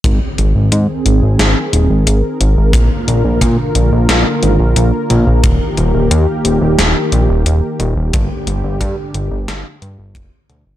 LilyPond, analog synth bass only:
\new Staff \with { instrumentName = "Analog synth bass" } { \clef bass \time 4/4 \key aes \lydian \tempo 4 = 89 aes,,16 r16 aes,,16 aes,,16 aes,16 r16 aes,,16 aes,,16 aes,,16 r16 ees,,16 aes,,16 aes,,16 r16 aes,,16 aes,,16 | bes,,16 r16 bes,,16 bes,,16 bes,16 r16 bes,,16 bes,,16 bes,,16 r16 aes,,16 bes,,16 bes,,16 r16 bes,,16 bes,,16 | ees,,16 r16 ees,,16 ees,,16 ees,16 r16 ees,,16 ees,,16 ees,,16 r16 bes,,16 ees,,16 ees,,16 r16 ees,,16 ees,,16 | g,,16 r16 g,,16 g,,16 g,16 r16 g,,16 g,,16 g,,16 r16 g,16 g,,16 f,,16 r16 d,16 r16 | }